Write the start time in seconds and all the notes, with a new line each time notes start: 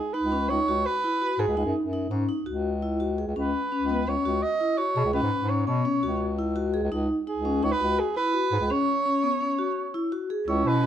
Already playing: G#4
0.13 D#4 B4
0.23 C#2
0.32 C#4
0.49 C#2 D#4 C#5
0.67 C#2 F#4
0.86 B4
1.04 E4
1.22 F#4
1.39 G#2 G#4
1.48 C#2
1.57 C#2 D#4
1.65 F#2
1.83 F#2
1.93 D#4
2.10 G#2 C#4
2.29 D#4
2.46 C#2 F#4
2.82 E4
3.00 F#4
3.18 G#4
3.27 C#2
3.36 C#2 C#4 B4
3.72 C#4
3.80 C#2
3.89 B3
4.07 C#2 C#4 C#5
4.25 C#2 F#4
4.42 D#5
4.61 E4
4.78 F#4 C#5
4.96 B2 G#4
5.05 C#2
5.13 C#2 C#4 B4
5.23 G#2
5.41 G#2
5.49 C#4 C#5
5.67 B2 B3 C#5
5.85 C#4
6.03 C#2 F#4
6.39 E4
6.56 F#4
6.74 G#4
6.83 C#2
6.91 C#2 D#4
7.27 D#4 G#4
7.36 C#2
7.45 C#4
7.63 C#2 D#4 C#5
7.72 B4
7.80 C#2 F#4
7.99 G#4
8.16 E4 B4
8.34 F#4
8.52 G#2 G#4
8.60 C#2
8.70 C#4 C#5
9.06 C#4
9.23 B3
9.41 C#4
9.59 F#4
9.94 E4
10.12 F#4
10.30 G#4
10.48 C#2 C#4 E4 C#5
10.65 B2 B4